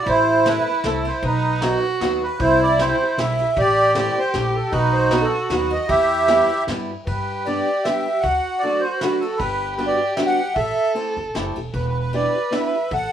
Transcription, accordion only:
0.09 E4 C5
0.48 B4
0.85 A4
1.07 C5
1.25 D#4 B4
2.23 B4
2.40 E4 C5
2.63 D5
2.80 C5
3.19 E5
3.58 G4 D5
3.99 D5
4.18 C5
4.36 G4
4.55 A4
4.71 D#4 B4
4.92 C5
5.11 B4
5.21 A4
5.49 B4
5.72 D#5
5.88 G4 E5
7.06 B4
7.46 D5
7.84 E5
8.20 F#5
8.59 D5
8.80 C5
8.99 B4
9.20 A4
9.37 B4
9.76 B4
9.86 D5
10.16 E5
10.26 F#5
10.55 E5
11.75 B4
11.89 B4
11.99 B4
12.15 D5
12.54 E5
12.94 F#5

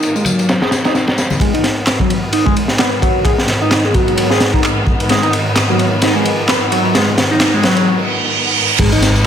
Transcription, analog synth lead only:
Already playing: D#4
0.15 G#3
0.25 F#3
0.62 G#4
0.85 D#4
1.40 G#3
1.54 D#4
2.00 F#3
2.33 D#4
2.46 G#3
2.79 B3
3.02 F#3
3.25 G#3
3.61 D#4
3.85 G#3
3.95 F#3
4.31 G#4
4.54 D#4
5.10 G#3
5.23 D#4
5.70 F#3
6.03 D#4
6.15 G#3
6.49 B3
6.72 F#3
6.95 G#3
7.31 D#4
7.54 G#3
7.64 F#3
8.79 G#3
8.92 D#4

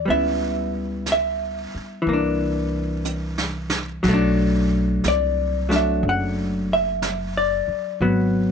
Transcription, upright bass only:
0.08 C#2
1.75 muted upright bass stroke
2.07 C2
4.05 B1
5.05 C2
6.03 F#1
7.68 muted upright bass stroke
8.01 G#1

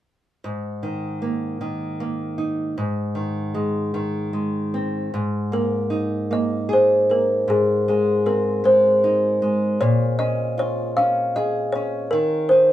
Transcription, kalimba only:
5.53 A#4
6.33 D#5
6.73 C5
7.11 A#4
7.50 G#4
7.89 G#4
8.27 A#4
8.65 C5
9.81 C#5
10.19 D#5
10.59 C#5
10.97 F5
11.36 D#5
11.72 C#5
12.11 A#4
12.49 C5

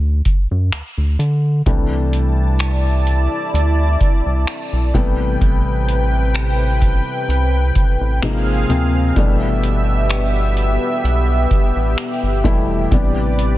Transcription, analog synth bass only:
Already playing: D2
0.51 F#2
0.72 D2
0.98 D2
1.19 D3
1.66 C2
3.54 D2
4.26 C2
4.73 B1
4.94 A1
5.41 A1
7.28 C2
8.01 A1
8.22 G#1
8.70 D2
9.16 G1
11.04 B1
11.76 A1
12.23 G1
12.44 E1
12.91 A1

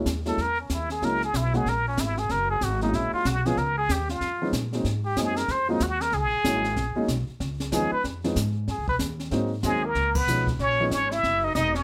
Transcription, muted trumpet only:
0.28 A4
0.42 A#4
0.61 C#4
0.73 E4
0.92 G#4
1.05 A#4
1.25 G#4
1.36 E4
1.57 G#4
1.69 A#4
1.88 C#4
2.00 E4
2.19 G#4
2.31 A#4
2.51 G#4
2.64 F#4
2.83 D#4
2.95 E4
3.14 F4
3.27 F#4
3.46 G#4
3.58 A#4
3.78 G#4
3.92 G4
4.10 F4
5.06 G4
5.18 G#4
5.37 A#4
5.51 C5
5.70 D#4
5.83 F#4
6.02 A#4
6.14 G#4
7.74 G#4
7.93 B4
8.71 G#4
8.89 B4
9.65 G#4
9.86 A#4
10.15 B4
10.60 C#5
10.93 C#5
11.11 E5
11.44 D#5
11.55 D#5
11.75 C#5

